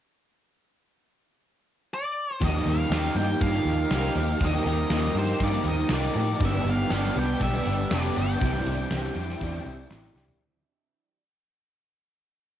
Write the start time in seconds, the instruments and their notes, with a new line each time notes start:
1.94 lead electric guitar D5
2.39 picked electric bass D#2, overdriven electric guitar D#3 G3 A#3, twelve-string acoustic guitar F3, string machine A#4 F5 G5 A#5, kick, closed hi-hat
2.43 clean electric guitar F3, overdriven electric guitar D#4 G4, lead electric guitar D#5
2.66 picked electric bass D#2, overdriven electric guitar A#3 D#4 G4, lead electric guitar F5, closed hi-hat
2.90 picked electric bass D#2, twelve-string acoustic guitar F3, clean electric guitar F3, overdriven electric guitar G3 A#3, snare, closed hi-hat
2.94 overdriven electric guitar D#4 G4
3.15 picked electric bass G2, twelve-string acoustic guitar A#3, overdriven electric guitar D#4 G4, lead electric guitar G5, closed hi-hat
3.21 overdriven electric guitar A#3
3.41 picked electric bass G2, overdriven electric guitar D#3 G3, clean electric guitar F3, twelve-string acoustic guitar F4, lead electric guitar F5, kick, closed hi-hat
3.45 overdriven electric guitar A#3 D#4 G4
3.65 picked electric bass D#2, twelve-string acoustic guitar F3, overdriven electric guitar D#4 G4, closed hi-hat
3.70 overdriven electric guitar A#3
3.91 picked electric bass C2, clean electric guitar F3, overdriven electric guitar G3 A#3 D#4 G4, lead electric guitar F5, snare, closed hi-hat
4.15 picked electric bass D#2, overdriven electric guitar D#4 G4, closed hi-hat
4.20 overdriven electric guitar A#3
4.28 closed hi-hat
4.40 picked electric bass D#2, overdriven electric guitar D#3 G3 A#3, twelve-string acoustic guitar F3, clean electric guitar F3, kick, closed hi-hat
4.45 overdriven electric guitar D#4 G4, lead electric guitar D#5
4.66 picked electric bass D#2, overdriven electric guitar A#3 D#4 G4, closed hi-hat
4.78 closed hi-hat
4.90 picked electric bass D#2, clean electric guitar F3, twelve-string acoustic guitar F3, overdriven electric guitar G3 A#3 D#4, snare, closed hi-hat
4.94 overdriven electric guitar G4
5.14 picked electric bass G2, twelve-string acoustic guitar A#3, overdriven electric guitar G4, lead electric guitar C5, closed hi-hat
5.19 overdriven electric guitar A#3 D#4
5.27 snare, closed hi-hat
5.38 picked electric bass G2, overdriven electric guitar D#3 G3, clean electric guitar F3, twelve-string acoustic guitar F4, kick, closed hi-hat
5.43 overdriven electric guitar A#3 D#4 G4, lead electric guitar D5
5.64 picked electric bass D#2, twelve-string acoustic guitar F3, overdriven electric guitar G4, lead electric guitar D#5, closed hi-hat
5.68 overdriven electric guitar A#3 D#4
5.89 picked electric bass C2, clean electric guitar F3, overdriven electric guitar G3 A#3 D#4, snare, closed hi-hat
5.94 overdriven electric guitar G4, lead electric guitar D5
6.14 picked electric bass A2, overdriven electric guitar G4, closed hi-hat
6.19 overdriven electric guitar A#3 D#4
6.27 closed hi-hat
6.40 picked electric bass G1, overdriven electric guitar G2 D3 G3, kick, closed hi-hat
6.44 overdriven electric guitar B3 D4 G4, string machine B4 D5 G5 D6, lead electric guitar E5
6.65 picked electric bass G1, overdriven electric guitar B3 D4 G4, closed hi-hat
6.69 overdriven electric guitar G3, lead electric guitar F5
6.90 picked electric bass G1, overdriven electric guitar G3 B3 D4 G4, snare, closed hi-hat
7.15 picked electric bass C2, overdriven electric guitar G3 B3 D4 G4, closed hi-hat
7.19 lead electric guitar G5
7.39 picked electric bass B1, overdriven electric guitar G2 D3 G3 B3 D4 G4, lead electric guitar E5, kick, closed hi-hat
7.66 picked electric bass G1, overdriven electric guitar G3 B3 D4 G4, closed hi-hat
7.90 picked electric bass F1, overdriven electric guitar G3 B3 D4 G4, lead electric guitar D5, snare, closed hi-hat
8.16 picked electric bass G1, overdriven electric guitar G3 B3 D4 G4, lead electric guitar G5, closed hi-hat
8.27 closed hi-hat
8.40 picked electric bass C2, overdriven electric guitar C3 E3 G3 E4, clean electric guitar D4, string machine C5 E5, kick, closed hi-hat
8.45 overdriven electric guitar G4
8.65 picked electric bass C2, twelve-string acoustic guitar C4, overdriven electric guitar E4 G4, closed hi-hat
8.70 overdriven electric guitar G3
8.79 closed hi-hat
8.91 picked electric bass C2, overdriven electric guitar E3 G3 E4, clean electric guitar D4, snare, closed hi-hat
8.96 overdriven electric guitar G4
9.16 picked electric bass F2, twelve-string acoustic guitar C4, overdriven electric guitar E4 G4, closed hi-hat
9.20 overdriven electric guitar G3
9.30 snare, closed hi-hat
9.41 picked electric bass E2, overdriven electric guitar C3 E3 G3 E4 G4, twelve-string acoustic guitar D4, clean electric guitar D4, kick, closed hi-hat
9.64 picked electric bass C2, twelve-string acoustic guitar E3, overdriven electric guitar G3 E4 G4, closed hi-hat
9.89 picked electric bass A1, overdriven electric guitar E3 G3 E4 G4, twelve-string acoustic guitar C4, clean electric guitar D4, snare, closed hi-hat
10.15 picked electric bass C2, overdriven electric guitar E4 G4, snare
10.19 overdriven electric guitar G3
10.28 floor tom